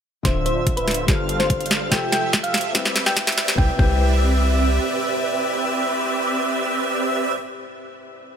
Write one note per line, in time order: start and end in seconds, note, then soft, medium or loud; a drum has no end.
0.23 1.06 D1 medium
0.23 1.03 D3 medium
0.23 1.04 D3 medium
0.23 1.04 D4 medium
0.23 1.04 F4 medium
0.23 1.05 F4 medium
0.23 0.40 C5 medium
0.23 1.04 C5 medium
0.23 1.04 E5 medium
0.23 kick medium
0.23 snare medium
0.23 closed hi-hat medium
0.27 1.05 C5 medium
0.46 0.68 C5 medium
0.46 closed hi-hat medium
0.67 kick loud
0.67 closed hi-hat medium
0.77 0.99 B4 loud
0.77 closed hi-hat medium
0.88 snare medium
0.88 closed hi-hat medium
0.91 closed hi-hat medium
0.94 closed hi-hat medium
1.06 1.90 G1 loud
1.06 1.87 G3 medium
1.06 1.88 G3 medium
1.06 1.88 D4 medium
1.06 1.87 F4 medium
1.06 1.88 A4 medium
1.06 1.88 C5 medium
1.06 1.88 F5 medium
1.06 kick loud
1.06 snare medium
1.06 closed hi-hat medium
1.10 1.89 C5 medium
1.29 closed hi-hat medium
1.40 1.62 C5 medium
1.40 snare medium
1.50 kick loud
1.50 closed hi-hat medium
1.61 closed hi-hat medium
1.66 closed hi-hat medium
1.71 snare medium
1.71 closed hi-hat medium
1.89 2.73 F1 medium
1.89 2.70 F3 medium
1.89 2.71 F3 medium
1.89 2.71 F4 medium
1.89 2.71 G4 medium
1.89 2.71 A4 medium
1.89 2.71 E5 medium
1.89 2.71 E5 loud
1.89 2.71 E5 medium
1.89 2.07 G5 loud
1.89 kick loud
1.89 snare medium
1.89 closed hi-hat medium
1.93 2.72 A4 medium
2.12 2.35 G5 medium
2.12 snare medium
2.12 closed hi-hat medium
2.33 kick loud
2.33 snare medium
2.33 closed hi-hat medium
2.43 2.66 F5 loud
2.43 closed hi-hat medium
2.54 snare medium
2.54 closed hi-hat medium
2.58 closed hi-hat medium
2.61 closed hi-hat medium
2.73 3.56 C2 loud
2.73 3.53 C3 medium
2.73 3.54 C4 medium
2.73 3.55 E4 medium
2.73 3.54 G4 medium
2.73 3.54 B4 medium
2.73 3.55 B4 medium
2.73 3.54 D5 medium
2.73 3.54 E5 medium
2.73 kick loud
2.73 snare loud
2.73 closed hi-hat medium
2.85 snare medium
2.96 snare loud
2.96 closed hi-hat medium
3.06 3.29 G5 loud
3.06 snare medium
3.17 kick loud
3.17 snare loud
3.17 closed hi-hat medium
3.27 snare loud
3.27 closed hi-hat medium
3.32 closed hi-hat medium
3.38 snare loud
3.38 closed hi-hat medium
3.48 snare loud
3.55 3.70 C2 loud
3.55 3.69 C3 medium
3.55 3.70 C4 medium
3.55 3.71 E4 medium
3.55 3.70 G4 medium
3.55 3.70 B4 medium
3.55 3.70 D5 medium
3.55 3.70 E5 loud
3.55 3.70 G5 medium
3.55 kick loud
3.61 3.72 B4 loud
3.76 4.79 C2 loud
3.76 7.29 C3 medium
3.76 7.31 C4 medium
3.76 7.32 C4 medium
3.76 7.32 G4 medium
3.76 7.32 B4 medium
3.76 7.32 D5 medium
3.76 7.32 E5 loud
3.76 7.32 E5 medium
3.76 7.32 G5 medium
3.76 kick loud
3.80 7.33 E4 medium
3.80 7.35 B4 loud